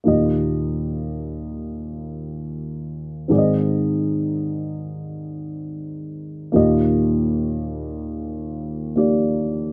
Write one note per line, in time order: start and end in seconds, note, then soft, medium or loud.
0.04 3.26 D#2 soft
0.04 3.26 A#2 soft
0.04 3.25 A#3 soft
0.04 3.25 D#4 soft
0.04 3.26 G4 soft
0.08 3.27 D#5 soft
3.28 6.50 G#2 soft
3.28 6.50 D#3 soft
3.28 6.49 C4 soft
3.28 6.50 D#4 soft
3.28 6.50 G#4 soft
3.28 3.37 D5 soft
3.38 6.54 D#5 soft
6.52 9.73 D#2 soft
6.52 9.73 A#2 soft
6.52 8.92 A#3 soft
6.52 8.93 D#4 soft
6.52 8.94 G4 soft
6.52 8.94 D#5 soft
8.96 9.73 A#3 soft
8.96 9.73 D#4 soft
8.96 9.73 G4 soft
8.96 9.73 D5 soft